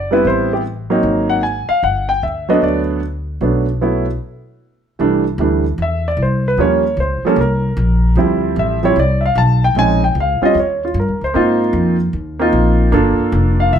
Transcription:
Already playing: F#1 D5
0.11 G3 B3 C4 E4 B4
0.24 A1 C5
0.53 G4
0.90 F#3 A#3 C4 D#4
1.03 G#1
1.29 F#5
1.43 G#5
1.69 F5, muted upright bass stroke
1.83 G1 F#5
2.09 G5
2.23 D2 E5
2.49 F#3 A3 B3 D4 D#5
2.62 D2 D5
3.41 B1 F#3 A3 B3 D4
3.81 F#3 A3 B3 E4
4.99 C2 E3 G3 A3 D4
5.38 D2 E3 G3 A3 D4
5.78 E2
5.82 E5
6.08 D5
6.17 C2
6.22 C5
6.48 B4
6.57 D#2 F3 G3 A#3 C#4 C#5
6.97 C#2 C5
7.23 F3 G3 A#3 A4, muted upright bass stroke
7.27 C#4
7.36 C2
7.41 A#4
7.77 A#1
8.16 D2 F3 G3 C4 E4
8.56 A1 E5
8.83 F3 G3 C4 E4 C#5
8.96 C2 D5
9.21 E5
9.26 F5
9.35 B1 A5
9.64 G5
9.75 A#1 G#3 C4 C#4 D#4 G#5
10.04 G5
10.15 C#2
10.20 F5
10.41 G3 C4 C#4 F4, muted upright bass stroke
10.45 D#5
10.54 D#2
10.60 C#5
10.85 F4
10.94 G2
11.00 A#4
11.08 D#2
11.21 C#2 C5
11.34 G#2 A#3 C4 D#4 F4
11.73 F2
12.13 D#2
12.39 A#3 C4 D#4 F4
12.53 A#1
12.92 G1 A#3 D4 F4 A4
13.19 muted upright bass stroke
13.32 F1
13.60 F5
13.73 C2 E5

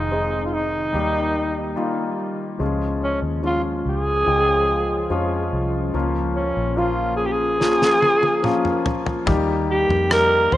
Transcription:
Already playing: F1 G#2 C3 D#3 G#3 C4 D#4 G#4
0.11 G#3 C4 D#4 G#4
0.45 F4
0.53 D#4
0.93 D#2 D#3 G3 A#3 D#4 G4
1.76 G3 A#3 D#4 F4
2.59 C#2 C#3 F3 G#3 C#4 F4
3.04 C#4
3.22 D#2
3.43 F3 G#3 C#4 F4
3.86 C#2 G#4
4.26 C#2 F3 G#3 C#4 G5
5.10 F2 F3 G#3 C#4 F4
5.53 C2
5.92 C#2 C#3 F3 A#3 C#4 F4
6.36 C#4
6.57 A#1
6.77 F3 A#3 C#4 F4
7.17 G#4
7.26 G4
7.32 G#4
7.60 F3 A#3 C#4 F4, snare
7.82 snare
8.02 high tom
8.23 high tom
8.43 F3 A#3 C#4 F4, mid tom
8.65 mid tom
8.86 floor tom
9.06 floor tom
9.26 D#2 D#3 G3 A#3 D#4 G4, kick, floor tom
9.71 G4
9.89 F2, floor tom
10.09 G3 A#3 D#4 G4 A#4, cross-stick
10.52 D#2 C5, floor tom

